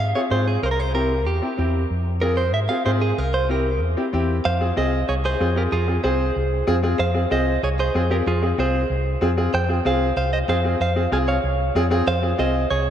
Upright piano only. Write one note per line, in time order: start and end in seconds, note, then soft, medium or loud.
0.15 0.21 C4 medium
0.15 0.21 F4 medium
0.15 0.21 G#4 medium
0.30 0.53 C4 medium
0.30 0.53 F4 medium
0.30 0.53 G#4 medium
0.94 1.11 C4 medium
0.94 1.11 E4 medium
0.94 1.11 G4 medium
1.42 1.48 C4 medium
1.42 1.48 E4 medium
1.42 1.48 G4 medium
1.58 1.80 C4 medium
1.58 1.81 E4 medium
1.58 1.81 G4 medium
2.22 2.39 C4 medium
2.22 2.39 F4 medium
2.22 2.39 G#4 medium
2.69 2.75 C4 medium
2.69 2.75 F4 medium
2.69 2.76 G#4 medium
2.85 3.08 C4 medium
2.85 3.08 F4 medium
2.85 3.08 G#4 medium
3.49 3.66 C4 medium
3.49 3.66 E4 medium
3.49 3.67 G4 medium
3.97 4.03 C4 medium
3.97 4.03 E4 medium
3.97 4.03 G4 medium
4.13 4.35 C4 medium
4.13 4.35 E4 medium
4.13 4.36 G4 medium
4.60 4.66 C4 medium
4.60 4.66 F4 medium
4.60 4.66 G#4 medium
4.76 4.99 C4 medium
4.76 4.99 F4 medium
4.76 4.99 G#4 medium
5.40 5.46 C4 medium
5.40 5.46 F4 medium
5.40 5.46 G#4 medium
5.55 5.67 C4 medium
5.55 5.67 F4 medium
5.55 5.67 G#4 medium
5.87 5.93 C4 medium
5.87 5.93 F4 medium
5.87 5.94 G#4 medium
6.04 6.26 C4 medium
6.04 6.26 F4 medium
6.04 6.26 G#4 medium
6.67 6.73 C4 medium
6.67 6.73 F4 medium
6.67 6.73 G#4 loud
6.83 6.94 C4 medium
6.83 6.94 F4 medium
6.83 6.95 G#4 medium
7.14 7.20 C4 medium
7.14 7.20 F4 medium
7.14 7.20 G#4 medium
7.30 7.53 C4 medium
7.30 7.53 F4 medium
7.30 7.53 G#4 medium
7.94 8.00 C4 medium
7.94 8.00 F4 medium
7.94 8.00 G#4 medium
8.10 8.21 C4 medium
8.10 8.22 F4 medium
8.10 8.22 G#4 medium
8.42 8.48 C4 medium
8.42 8.48 F4 medium
8.42 8.48 G#4 medium
8.58 8.80 C4 medium
8.58 8.80 F4 medium
8.58 8.81 G#4 medium
9.21 9.27 C4 medium
9.21 9.27 F4 medium
9.21 9.27 G#4 medium
9.37 9.48 C4 medium
9.37 9.48 F4 medium
9.37 9.49 G#4 medium
9.69 9.74 C4 medium
9.69 9.75 F4 medium
9.69 9.75 G#4 medium
9.85 10.07 C4 medium
9.85 10.07 F4 medium
9.85 10.08 G#4 medium
10.48 10.54 C4 medium
10.48 10.54 F4 medium
10.48 10.54 G#4 medium
10.64 10.75 C4 medium
10.64 10.76 F4 medium
10.64 10.76 G#4 medium
10.96 11.01 C4 medium
10.96 11.02 F4 medium
10.96 11.02 G#4 medium
11.11 11.34 C4 medium
11.11 11.34 F4 medium
11.11 11.34 G#4 medium
11.75 11.81 C4 medium
11.75 11.81 F4 medium
11.75 11.81 G#4 loud
11.90 12.02 C4 medium
11.90 12.02 F4 medium
11.90 12.02 G#4 medium
12.22 12.28 C4 medium
12.22 12.28 F4 medium
12.22 12.29 G#4 medium
12.38 12.61 C4 medium
12.38 12.61 F4 medium
12.38 12.61 G#4 medium